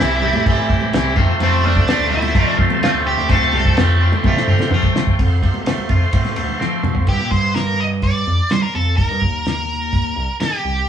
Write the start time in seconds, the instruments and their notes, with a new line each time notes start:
Already playing: clean electric guitar E3, lead electric guitar E4, tonewheel organ G4 C5 E5 C6
0.00 picked electric bass C2, clean electric guitar G3 C4 E4, snare
0.22 clean electric guitar G3 C4 E4, low conga
0.33 picked electric bass A2, high conga
0.46 clean electric guitar C3 E3 G3 C4 E4, kick, crash
0.58 picked electric bass A2
0.69 clean electric guitar G3 C4 E4, kick
0.81 high conga
0.93 picked electric bass C2, clean electric guitar E3 G3 C4 E4, snare, crash
1.16 picked electric bass F2, clean electric guitar F2 C3 F3 A3 C4 F4, tonewheel organ A4 C5 A5 C6, kick, low conga
1.40 clean electric guitar F2 C3 F3 A3 C4 F4, picked electric bass F2, lead electric guitar C4, crash, low conga
1.64 clean electric guitar F3 A3 C4 F4, lead electric guitar D4, high conga
1.76 picked electric bass D2, kick
1.87 clean electric guitar F3 A3 C4 F4, snare, crash
1.99 picked electric bass D2, snare
2.11 clean electric guitar F3 A3 C4 F4, lead electric guitar E4, low conga
2.22 high conga
2.34 clean electric guitar F2 C3 F3 A3 C4 F4, picked electric bass F3, kick, crash
2.57 picked electric bass F3, clean electric guitar F3 A3 C4 F4, kick
2.70 high conga
2.81 clean electric guitar F3 A3 C4 F4, lead electric guitar F4, snare, crash
2.93 picked electric bass D2
3.06 lead electric guitar G4, tonewheel organ G5
3.18 picked electric bass D2
3.28 clean electric guitar F2 C3 F3 A3 C4 F4, lead electric guitar A4, kick, crash, low conga
3.52 picked electric bass C2, clean electric guitar F3 A3 C4 F4, high conga
3.65 kick
3.77 picked electric bass F2, clean electric guitar F3 A3 C4 F4, snare, crash
4.00 clean electric guitar F3 A3 C4 F4
4.12 picked electric bass D3, high conga
4.24 clean electric guitar F2 C3 F3 A3 C4 F4, kick, high tom, high conga
4.36 picked electric bass D3, snare
4.48 clean electric guitar F3 A3 C4 F4, mid tom
4.59 snare, high conga
4.71 clean electric guitar F3 A3 C4 F4, picked electric bass F3, mid tom
4.83 kick, high conga
4.95 picked electric bass F3, snare
5.07 kick
5.19 picked electric bass F2, clean electric guitar F2, tonewheel organ A4 C5 F5 C6, kick, ride
5.43 clean electric guitar C3, kick, ride
5.54 high conga
5.66 clean electric guitar A3, snare, ride
5.78 high conga
5.89 picked electric bass F2, clean electric guitar F4, kick, ride, low conga
6.13 picked electric bass A2, clean electric guitar C4, kick, ride
6.25 snare, high conga
6.36 picked electric bass D2, clean electric guitar A3, ride
6.49 low conga
6.59 picked electric bass F3, clean electric guitar C4, snare
6.83 clean electric guitar F3, mid tom, high conga, low conga
6.95 picked electric bass F2, floor tom
7.07 picked electric bass G2, lead electric guitar G4, kick, crash
7.21 picked electric bass A#2
7.31 picked electric bass G2, lead electric guitar C5, kick
7.55 lead electric guitar A#4, snare, open hi-hat
7.80 lead electric guitar D#5
8.02 lead electric guitar D5, kick, open hi-hat
8.27 picked electric bass F2
8.50 picked electric bass G3, lead electric guitar C5, snare, open hi-hat
8.62 lead electric guitar A#4
8.75 picked electric bass F2, lead electric guitar A4
8.97 picked electric bass D#2, lead electric guitar A#4, kick, open hi-hat
9.10 picked electric bass G2
9.22 picked electric bass D#2, kick
9.46 snare, open hi-hat
9.93 kick, open hi-hat
10.16 picked electric bass C2
10.40 picked electric bass D#3, lead electric guitar G4, snare, open hi-hat
10.64 picked electric bass C2